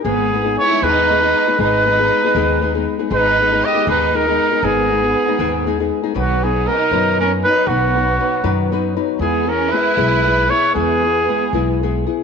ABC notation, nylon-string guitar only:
X:1
M:6/8
L:1/16
Q:3/8=79
K:G#m
V:1 name="Nylon-string guitar"
[G,,D,G,B,DG]2 [G,B,DG] [G,B,DG]2 [G,B,DG] [G,,D,G,B,DG]2 [G,B,DG] [G,B,DG]2 [G,B,DG] | [G,,D,G,B,DG]2 [G,B,DG] [G,B,DG]2 [G,B,DG] [G,,D,G,B,DG]2 [G,B,DG] [G,B,DG]2 [G,B,DG] | [G,,D,G,B,DG]2 [G,B,DG] [G,B,DG]2 [G,B,DG] [G,,D,G,B,DG]2 [G,B,DG] [G,B,DG]2 [G,B,DG] | [G,,D,G,B,DG]2 [G,B,DG] [G,B,DG]2 [G,B,DG] [G,,D,G,B,DG]2 [G,B,DG] [G,B,DG]2 [G,B,DG] |
[K:B] [B,,D,F,B,DB]2 [F,B,DB]2 [F,B,DB]2 [B,,D,F,B,DB]2 [F,B,DB]2 [F,B,DB]2 | [B,,D,F,B,DB]2 [F,B,DB]2 [F,B,DB]2 [B,,D,F,B,DB]2 [F,B,DB]2 [F,B,DB]2 | [E,G,B,EG]2 [B,EG]2 [G,B,EG]2 [E,G,B,EG]2 [G,B,EG]2 [B,EG]2 | [E,G,B,EG]2 [B,EG]2 [G,B,EG]2 [E,G,B,EG]2 [G,B,EG]2 [B,EG]2 |]